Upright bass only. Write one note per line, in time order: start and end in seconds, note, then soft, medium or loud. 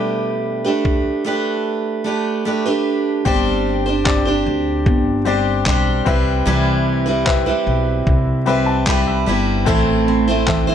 3.26 4.42 G1 medium
4.46 4.83 D2 medium
4.86 5.63 G1 medium
5.66 6.03 B1 medium
6.07 6.44 C2 medium
6.47 7.43 C2 medium
7.67 8.04 B1 medium
8.07 9.23 C2 loud
9.27 9.67 G1 medium
9.67 10.75 A1 medium